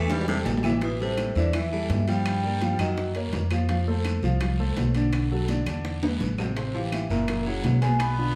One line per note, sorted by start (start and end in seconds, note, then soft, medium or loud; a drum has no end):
0.00 0.42 E2 loud
0.00 0.22 E3 medium
0.00 0.13 A3 loud
0.00 0.22 E4 loud
0.00 0.22 E5 medium
0.10 0.28 G3 loud
0.10 cowbell loud
0.10 high bongo medium
0.10 high timbale medium
0.10 low agogo medium
0.10 long guiro medium
0.21 low timbale medium
0.28 0.39 C3 loud
0.28 0.58 G3 medium
0.28 0.58 G4 medium
0.28 0.58 A4 medium
0.28 high bongo medium
0.28 high conga soft
0.45 1.30 A1 loud
0.45 cowbell medium
0.45 low bongo medium
0.45 high conga medium
0.45 low timbale medium
0.45 low agogo medium
0.45 short guiro medium
0.57 low timbale medium
0.63 0.79 E3 medium
0.63 0.79 E4 medium
0.63 0.79 E5 medium
0.63 low bongo medium
0.63 high conga medium
0.63 low agogo loud
0.63 short guiro medium
0.63 claves medium
0.70 low timbale medium
0.81 0.99 B2 medium
0.81 0.97 E3 medium
0.81 0.97 E4 medium
0.81 1.01 B4 medium
0.81 0.97 E5 medium
0.81 high bongo medium
0.81 high timbale medium
0.81 long guiro medium
1.00 1.34 C3 medium
1.00 1.30 G3 medium
1.00 1.30 G4 medium
1.00 1.30 A4 medium
1.00 1.38 C5 medium
1.00 high bongo soft
1.18 high bongo medium
1.18 high conga medium
1.18 high timbale medium
1.18 short guiro medium
1.18 claves medium
1.35 1.86 E2 medium
1.35 1.53 D3 medium
1.35 1.51 E3 medium
1.35 1.51 E4 medium
1.35 1.53 D5 medium
1.35 1.51 E5 medium
1.35 high bongo soft
1.35 high conga soft
1.35 short guiro medium
1.53 1.69 E3 medium
1.53 1.71 E3 medium
1.53 1.69 E4 medium
1.53 1.69 E5 medium
1.53 1.71 E5 loud
1.53 high bongo medium
1.53 high conga soft
1.53 low conga medium
1.53 high timbale medium
1.53 long guiro medium
1.53 claves medium
1.72 2.05 E3 medium
1.72 2.01 G3 medium
1.72 2.02 G4 medium
1.72 2.02 A4 medium
1.72 2.06 E5 medium
1.72 high bongo soft
1.72 high conga soft
1.89 2.73 G2 medium
1.89 high bongo soft
1.89 low bongo medium
1.89 high conga medium
1.89 high timbale medium
1.89 low timbale medium
1.89 short guiro medium
2.08 2.37 F3 medium
2.08 2.76 G3 medium
2.08 2.38 F4 medium
2.08 2.38 F5 medium
2.08 2.82 G5 loud
2.08 high timbale medium
2.08 short guiro medium
2.26 high bongo medium
2.26 high conga soft
2.26 high timbale medium
2.26 long guiro medium
2.26 claves medium
2.44 2.58 A#3 medium
2.44 2.59 A#4 medium
2.44 2.59 D5 medium
2.44 high bongo soft
2.44 high conga soft
2.61 2.76 F3 medium
2.61 2.76 F4 medium
2.61 2.77 F5 medium
2.61 high bongo medium
2.61 high conga medium
2.61 high timbale medium
2.61 short guiro medium
2.79 3.29 F#2 medium
2.79 3.13 D#3 medium
2.79 3.09 F#3 medium
2.79 3.09 F#4 medium
2.79 3.13 D#5 medium
2.79 3.09 F#5 medium
2.79 high bongo soft
2.79 high timbale medium
2.79 short guiro medium
2.79 claves medium
2.97 high bongo medium
2.97 high conga soft
2.97 long guiro medium
3.15 3.45 A#3 medium
3.15 3.45 A#4 medium
3.15 3.45 C#5 medium
3.15 high bongo soft
3.15 high timbale medium
3.32 4.17 F2 medium
3.32 high bongo soft
3.32 low bongo medium
3.32 high conga soft
3.32 high timbale medium
3.32 low timbale medium
3.32 short guiro medium
3.51 3.66 F3 medium
3.51 3.66 F4 medium
3.51 3.66 F5 medium
3.51 high conga medium
3.51 high timbale medium
3.51 short guiro medium
3.51 claves medium
3.69 3.84 F3 medium
3.69 3.84 F4 medium
3.69 3.84 F5 medium
3.69 high bongo medium
3.69 high conga soft
3.69 high timbale medium
3.69 long guiro medium
3.87 4.17 A3 medium
3.87 4.17 A4 medium
3.87 4.17 C5 medium
3.87 high bongo soft
4.05 high bongo medium
4.05 high conga medium
4.05 high timbale medium
4.05 short guiro medium
4.05 claves medium
4.22 4.73 C2 medium
4.22 4.38 F3 medium
4.22 4.38 F4 medium
4.22 4.38 F5 medium
4.22 high bongo soft
4.22 high conga soft
4.22 short guiro medium
4.41 4.56 F3 medium
4.41 4.56 F4 medium
4.41 4.56 F5 medium
4.41 high bongo medium
4.41 high conga soft
4.41 low conga medium
4.41 high timbale loud
4.41 long guiro medium
4.41 claves medium
4.59 4.89 A3 medium
4.59 4.89 A4 medium
4.59 4.89 C5 medium
4.59 high bongo soft
4.59 high conga soft
4.76 5.61 B1 medium
4.76 high bongo soft
4.76 low bongo medium
4.76 high conga medium
4.76 high timbale medium
4.76 low timbale medium
4.76 short guiro medium
4.95 5.24 D3 medium
4.95 5.25 D4 medium
4.95 5.25 D5 medium
4.95 high conga medium
4.95 high timbale medium
4.95 short guiro medium
5.13 high bongo medium
5.13 high timbale medium
5.13 long guiro medium
5.13 claves medium
5.31 5.46 F#3 medium
5.31 5.46 F#4 medium
5.31 5.46 A4 medium
5.31 high bongo soft
5.31 high conga soft
5.48 5.64 D3 medium
5.48 5.64 D4 medium
5.48 5.64 D5 medium
5.48 high bongo medium
5.48 high conga loud
5.48 high timbale medium
5.48 short guiro medium
5.66 6.17 E2 medium
5.66 5.96 D3 medium
5.66 5.97 D4 medium
5.66 5.97 D5 medium
5.66 high bongo soft
5.66 high conga medium
5.66 high timbale medium
5.66 short guiro medium
5.66 claves medium
5.85 high bongo medium
5.85 long guiro medium
6.02 6.32 G#3 medium
6.02 6.33 G#4 medium
6.02 6.33 B4 medium
6.02 high bongo soft
6.02 high conga medium
6.02 high timbale medium
6.20 7.04 A1 medium
6.20 high bongo soft
6.20 low bongo medium
6.20 low conga medium
6.20 short guiro medium
6.38 6.54 C3 medium
6.38 6.54 C4 medium
6.38 6.54 C5 medium
6.38 low conga medium
6.38 low timbale medium
6.38 short guiro medium
6.38 claves medium
6.57 6.71 C3 medium
6.57 6.72 C4 medium
6.57 6.72 C5 medium
6.57 high bongo medium
6.57 high timbale medium
6.57 long guiro medium
6.74 7.04 E3 medium
6.74 6.82 F3 medium
6.74 7.04 E4 medium
6.74 7.04 G4 medium
6.74 6.83 F5 medium
6.74 high bongo soft
6.74 high conga soft
6.92 7.09 E3 medium
6.92 7.10 E5 medium
6.92 high bongo medium
6.92 high conga medium
6.92 high timbale medium
6.92 short guiro medium
6.92 claves medium
7.10 7.60 F#1 medium
7.10 7.25 A#2 medium
7.10 7.44 E3 medium
7.10 7.25 A#3 medium
7.10 7.25 A#4 medium
7.10 7.44 E5 medium
7.10 high bongo soft
7.10 short guiro medium
7.28 7.43 A#2 medium
7.28 7.43 A#3 medium
7.28 7.43 A#4 medium
7.28 high bongo medium
7.28 high conga soft
7.28 low conga medium
7.28 high timbale loud
7.28 long guiro medium
7.28 claves medium
7.46 7.76 C#3 medium
7.46 7.79 F#3 medium
7.46 7.76 C#4 medium
7.46 7.76 E4 medium
7.46 7.80 F#5 medium
7.46 high bongo soft
7.46 high conga soft
7.63 8.35 B1 medium
7.63 high bongo soft
7.63 low bongo medium
7.63 high conga medium
7.63 high timbale medium
7.63 low timbale medium
7.63 short guiro medium
7.81 8.12 B2 medium
7.81 7.98 G#3 medium
7.81 8.12 B3 medium
7.81 8.12 B4 medium
7.81 8.00 G#5 medium
7.81 high conga medium
7.81 high timbale medium
7.81 short guiro medium
7.99 8.35 B3 loud
7.99 8.35 B5 medium
7.99 high bongo medium
7.99 high timbale medium
7.99 long guiro medium
7.99 claves medium
8.18 8.33 D3 medium
8.18 8.33 D4 medium
8.18 8.33 F4 medium
8.18 high bongo soft
8.18 high conga soft